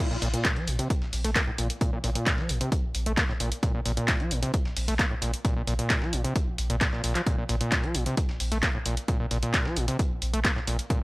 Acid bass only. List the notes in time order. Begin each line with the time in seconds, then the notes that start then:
0.11 A#2
0.22 A#2
0.34 A#2
0.56 F3
0.67 A#2
0.79 C3
1.25 A3
1.36 A#3
1.47 A2
1.58 A#2
1.81 A#2
1.93 A#2
2.04 A#2
2.15 A#2
2.38 F3
2.49 A#2
2.61 C3
3.06 A3
3.18 A#3
3.29 A2
3.40 A#2
3.63 A#2
3.74 A#2
3.85 A#2
3.97 A#2
4.20 F3
4.31 A#2
4.43 C3
4.88 A3
4.99 A#3
5.11 A2
5.22 A#2
5.45 A#2
5.56 A#2
5.67 A#2
5.79 A#2
6.02 F3
6.13 A#2
6.24 C3
6.70 A#2
6.81 A#2
6.93 A#2
7.04 A#2
7.15 F3
7.27 A#2
7.38 A#2
7.49 A#2
7.61 A#2
7.83 F3
7.95 A#2
8.06 C3
8.52 A3
8.63 A#3
8.75 A2
8.86 A#2
9.08 A#2
9.20 A#2
9.31 A#2
9.43 A#2
9.66 F3
9.77 A#2
9.88 C3
10.33 A3
10.45 A#3
10.56 A2
10.67 A#2
10.90 A#2